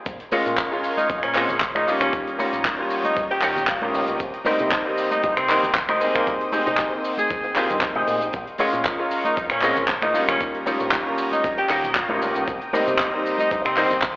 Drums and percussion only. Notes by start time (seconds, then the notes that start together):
0.06 kick, closed hi-hat, shaker
0.20 closed hi-hat
0.31 open hi-hat, high conga, shaker
0.46 closed hi-hat, shaker
0.58 kick, clap, closed hi-hat, shaker
0.83 open hi-hat, shaker
0.97 closed hi-hat, high conga, shaker
1.09 kick, closed hi-hat, shaker
1.23 finger snap, closed hi-hat
1.35 clap, open hi-hat, shaker
1.49 closed hi-hat, low conga, shaker
1.60 kick, clap, closed hi-hat, shaker
1.75 finger snap, high conga
1.88 open hi-hat, shaker
2.01 finger snap, closed hi-hat, shaker
2.13 kick, closed hi-hat, shaker
2.27 closed hi-hat
2.39 open hi-hat, high conga, shaker
2.53 closed hi-hat, shaker
2.65 kick, clap, closed hi-hat, shaker
2.90 open hi-hat, shaker
3.04 closed hi-hat, high conga, shaker
3.17 kick, closed hi-hat, shaker
3.31 closed hi-hat
3.42 clap, open hi-hat, shaker
3.56 closed hi-hat, low conga, shaker
3.67 kick, clap, closed hi-hat, shaker
3.82 high conga
3.94 open hi-hat, shaker
4.07 closed hi-hat, shaker
4.19 kick, closed hi-hat, shaker
4.34 closed hi-hat
4.45 open hi-hat, high conga, shaker
4.59 closed hi-hat, shaker
4.72 kick, clap, closed hi-hat, shaker
4.98 open hi-hat, shaker
5.11 closed hi-hat, high conga, shaker
5.23 kick, closed hi-hat, shaker
5.37 finger snap, closed hi-hat
5.49 clap, open hi-hat, shaker
5.63 closed hi-hat, low conga, shaker
5.75 kick, clap, closed hi-hat, shaker
5.89 finger snap, high conga
6.01 open hi-hat, shaker
6.15 finger snap, closed hi-hat, shaker
6.27 kick, closed hi-hat, shaker
6.41 closed hi-hat
6.52 open hi-hat, high conga, shaker
6.66 closed hi-hat, shaker
6.77 kick, clap, closed hi-hat, shaker
7.04 open hi-hat, shaker
7.18 closed hi-hat, high conga, shaker
7.30 kick, closed hi-hat, shaker
7.43 closed hi-hat
7.56 clap, open hi-hat, shaker
7.70 closed hi-hat, low conga, shaker
7.81 kick, clap, closed hi-hat, shaker
7.95 high conga
8.07 open hi-hat, shaker
8.21 closed hi-hat, shaker
8.33 kick, closed hi-hat, shaker
8.47 closed hi-hat
8.58 open hi-hat, high conga, shaker
8.73 closed hi-hat, shaker
8.85 kick, clap, closed hi-hat, shaker
9.11 open hi-hat, shaker
9.24 closed hi-hat, high conga, shaker
9.37 kick, closed hi-hat, shaker
9.50 finger snap, closed hi-hat
9.62 clap, open hi-hat, shaker
9.76 closed hi-hat, low conga, shaker
9.88 kick, clap, closed hi-hat, shaker
10.02 finger snap, high conga
10.15 open hi-hat, shaker
10.28 finger snap, closed hi-hat, shaker
10.41 kick, closed hi-hat, shaker
10.55 closed hi-hat
10.66 open hi-hat, high conga, shaker
10.80 closed hi-hat, shaker
10.91 kick, clap, closed hi-hat, shaker
11.18 open hi-hat, shaker
11.31 closed hi-hat, high conga, shaker
11.44 kick, closed hi-hat, shaker
11.58 closed hi-hat
11.69 clap, open hi-hat, shaker
11.84 closed hi-hat, low conga, shaker
11.95 kick, clap, closed hi-hat, shaker
12.09 high conga
12.22 open hi-hat, shaker
12.36 closed hi-hat, shaker
12.48 kick, closed hi-hat, shaker
12.61 closed hi-hat
12.73 open hi-hat, high conga, shaker
12.88 closed hi-hat, shaker
12.99 kick, clap, closed hi-hat, shaker
13.26 open hi-hat, shaker
13.38 closed hi-hat, high conga, shaker
13.51 kick, closed hi-hat, shaker
13.65 finger snap, closed hi-hat
13.77 clap, open hi-hat, shaker
13.90 closed hi-hat, low conga, shaker
14.02 kick, clap, closed hi-hat, shaker